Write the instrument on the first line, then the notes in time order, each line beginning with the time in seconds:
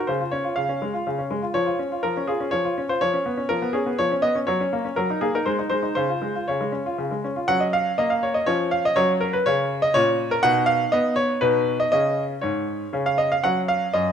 grand piano
0.07 C#3 C5
0.21 F4
0.31 C#4 C#5
0.44 F4
0.56 C#3 F5
0.69 C#4
0.82 G#3
0.94 F4
1.07 C#3
1.18 C#4
1.31 G#3
1.42 F4
1.54 F3 C#5
1.66 F4
1.79 C#4
1.92 F4
2.03 F3 A#4
2.17 C#4
2.27 F4 G#4
2.40 C#4
2.51 F3 C#5
2.65 F4
2.78 C#4
2.89 F4 C5
3.01 F3 C#5
3.14 C#4
3.26 B3
3.37 C#4
3.49 F3 A#4
3.62 B3
3.73 C#4 G#4
3.86 B3
3.98 F3 C#5
4.12 C#4
4.22 B3 D#5
4.35 C#4
4.47 F#3 C#5
4.61 C#4
4.73 A#3
4.85 C#4
4.96 F#3 A#4
5.10 D#4
5.21 A#3 G#4
5.35 D#4 A#4
5.46 G#3 C5
5.59 D#4
5.70 G#3 C5
5.83 D#4
5.95 C#3 C5
6.09 F4
6.22 G#3
6.35 F4
6.48 C#3 C#5
6.61 G#3
6.72 C#4
6.86 F4
6.98 C#3
7.11 G#3
7.24 C#4
7.36 F4
7.48 F#3 C#4 F#5
7.60 D#5
7.73 F5
7.98 A#3 D#5
8.10 F5
8.23 C#5
8.34 D#5
8.46 F3 C#4 C#5
8.71 F5
8.85 D#5
8.96 F#3 C#4 C#5
9.21 A#4
9.33 B4
9.46 C#3 C#5
9.82 D#5
9.94 A#2 C#4 C#5
10.31 A#4
10.43 B2 D#4 F#5
10.66 F5
10.92 B3 D#5
11.16 C#5
11.41 B2 D#4 B4
11.80 D#5
11.92 C#3 C#4 D#5
12.41 G#2 C#5
12.93 C#3 C#4
13.06 F5
13.18 D#5
13.32 F5
13.44 F#3 C#4 F#5
13.68 F5
13.94 F#2 D#5